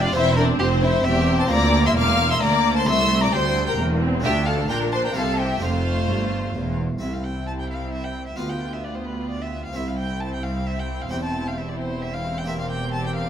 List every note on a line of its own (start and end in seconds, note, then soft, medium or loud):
0.00 0.14 F1 medium
0.00 0.11 F2 medium
0.00 0.14 F2 medium
0.00 0.15 D4 medium
0.00 0.15 F4 medium
0.00 0.10 G4 medium
0.00 0.15 D5 medium
0.04 0.15 F5 loud
0.11 0.59 E1 loud
0.11 0.59 E2 medium
0.11 1.46 C4 medium
0.11 1.04 C4 medium
0.11 1.46 E4 medium
0.11 0.37 E4 loud
0.11 1.47 G4 medium
0.11 0.36 C5 loud
0.15 0.57 E2 medium
0.15 0.38 E5 loud
0.37 0.60 D4 loud
0.37 0.45 A#4 medium
0.37 0.47 D5 loud
0.59 1.05 F1 loud
0.59 1.05 F2 medium
0.59 1.02 F2 medium
0.59 0.83 C4 loud
0.59 0.67 G4 loud
0.59 0.83 C5 loud
0.83 1.06 E4 medium
0.83 1.06 C5 loud
0.83 1.06 E5 loud
1.04 1.50 E1 medium
1.04 1.50 E2 loud
1.04 1.48 E2 medium
1.04 1.50 C4 medium
1.04 1.39 G4 loud
1.04 1.39 E5 medium
1.04 1.39 G5 loud
1.39 1.51 C5 loud
1.39 1.50 A5 medium
1.39 1.52 C6 loud
1.47 1.96 D2 loud
1.47 2.81 A#3 medium
1.47 2.82 F4 medium
1.47 2.83 A#4 medium
1.47 1.84 A#5 loud
1.51 1.93 D2 medium
1.51 2.40 A#3 medium
1.51 1.85 D5 loud
1.51 1.85 D6 loud
1.86 1.90 E5 loud
1.86 1.91 C6 medium
1.86 1.97 E6 loud
1.96 2.41 E1 loud
1.96 2.41 E2 medium
1.96 2.38 E2 medium
1.96 2.30 F5 loud
1.96 2.30 D6 loud
1.96 2.30 F6 loud
2.31 2.42 E5 loud
2.31 2.42 C6 loud
2.31 2.43 E6 loud
2.41 2.83 D2 medium
2.41 2.86 D2 medium
2.41 2.87 D2 medium
2.41 2.86 A#3 medium
2.41 2.76 D5 loud
2.41 2.75 A#5 loud
2.41 2.77 D6 loud
2.75 2.80 C5 loud
2.75 2.88 A5 loud
2.75 2.88 C6 loud
2.83 4.18 C4 medium
2.83 4.19 E4 medium
2.83 4.20 G4 medium
2.83 3.21 E5 loud
2.83 3.23 C6 loud
2.87 3.29 C2 medium
2.87 3.33 C2 medium
2.87 3.33 A3 medium
2.87 3.22 E6 loud
3.21 3.33 D5 loud
3.21 3.34 A#5 loud
3.21 3.34 D6 loud
3.32 3.78 D2 medium
3.32 3.78 D2 loud
3.32 3.75 D2 medium
3.32 3.79 G3 medium
3.32 3.67 C5 loud
3.32 3.66 G5 loud
3.32 3.67 C6 loud
3.67 3.78 A#4 medium
3.67 3.78 G5 medium
3.67 3.79 A#5 medium
3.78 4.23 E1 medium
3.78 4.23 E2 medium
3.78 4.20 E2 medium
3.78 4.01 A#3 medium
4.01 4.24 C4 medium
4.20 4.70 D2 medium
4.20 4.67 A3 medium
4.20 4.67 D4 medium
4.20 4.68 D4 medium
4.20 4.68 F4 medium
4.20 4.32 G4 loud
4.20 4.47 E5 loud
4.20 4.46 G5 loud
4.24 4.70 D2 medium
4.24 4.66 D2 medium
4.46 4.69 A4 medium
4.46 4.69 F5 medium
4.46 4.70 A5 loud
4.68 5.15 A#1 medium
4.68 5.15 A#2 medium
4.68 5.13 A#2 medium
4.68 5.14 D4 medium
4.68 5.15 D4 medium
4.68 5.14 F4 medium
4.68 4.92 A#4 loud
4.68 4.77 G5 loud
4.68 4.77 A#5 loud
4.92 5.04 C5 medium
4.92 4.97 A5 medium
4.92 5.04 C6 loud
5.04 5.16 A#4 medium
5.04 5.15 G5 medium
5.04 5.17 A#5 medium
5.12 5.59 A#3 medium
5.12 5.58 C4 soft
5.12 5.62 C4 medium
5.12 5.60 E4 medium
5.16 5.61 C2 medium
5.16 5.61 C3 medium
5.16 5.58 C3 medium
5.16 5.39 A4 medium
5.16 5.38 F5 medium
5.16 5.39 A5 loud
5.38 5.62 G4 medium
5.38 5.64 E5 medium
5.38 5.63 G5 medium
5.58 6.05 A3 medium
5.58 6.06 C4 medium
5.58 6.97 F4 medium
5.58 6.78 F4 medium
5.62 6.08 F1 medium
5.62 6.05 F2 medium
5.62 6.08 F2 medium
5.62 6.81 A3 medium
5.62 6.78 C5 medium
5.62 6.76 F5 loud
6.08 6.55 G1 medium
6.08 6.55 G2 medium
6.08 6.51 G2 medium
6.55 7.01 E1 medium
6.55 7.00 E2 medium
6.55 6.97 E2 medium
6.99 8.35 C2 medium
6.99 8.35 C2 soft
6.99 8.33 C4 soft
6.99 8.35 C4 soft
6.99 8.34 E4 soft
6.99 8.35 E4 soft
6.99 9.72 G4 soft
6.99 7.15 E5 medium
7.14 7.26 F5 soft
7.24 7.47 G5 medium
7.47 7.52 A5 medium
7.60 7.69 G5 medium
7.70 7.92 F5 medium
7.93 8.05 E5 medium
8.04 8.26 G5 medium
8.27 8.38 E5 medium
8.36 9.73 D2 soft
8.36 9.72 D2 soft
8.36 9.71 B3 soft
8.36 9.73 B3 soft
8.36 9.71 F4 soft
8.36 9.73 F4 soft
8.36 8.51 F5 medium
8.49 8.75 G5 medium
8.73 8.85 E5 medium
8.84 8.97 D5 medium
8.95 9.07 C5 medium
9.06 9.29 B4 medium
9.30 9.43 D5 medium
9.42 9.64 E5 medium
9.65 9.77 F5 medium
9.73 11.10 C2 medium
9.73 11.09 C2 soft
9.73 11.07 C4 soft
9.73 12.45 C4 medium
9.73 11.08 E4 soft
9.73 12.45 E4 soft
9.73 12.45 G4 medium
9.73 9.90 E5 medium
9.88 9.98 F5 medium
9.99 10.22 G5 medium
10.20 10.32 A5 medium
10.34 10.45 G5 medium
10.43 10.68 F5 medium
10.66 10.81 E5 medium
10.79 11.03 G5 medium
11.02 11.10 F5 medium
11.09 13.29 E1 medium
11.09 13.29 E2 medium
11.09 13.29 E2 soft
11.09 12.43 C4 soft
11.09 12.44 G4 soft
11.09 11.16 G5 medium
11.24 11.49 A5 medium
11.47 11.59 F5 medium
11.58 11.70 E5 medium
11.69 11.79 D5 medium
11.79 12.03 C5 medium
12.02 12.15 E5 medium
12.14 12.40 F5 medium
12.38 12.47 G5 medium
12.44 13.29 A#3 soft
12.44 13.29 C4 soft
12.44 13.29 G4 soft
12.44 12.53 E5 medium
12.49 13.29 C4 medium
12.49 13.29 G4 medium
12.49 13.29 A#4 medium
12.60 12.70 F5 medium
12.71 12.93 G5 medium
12.94 13.05 A5 medium
13.07 13.15 G5 medium
13.16 13.29 F5 medium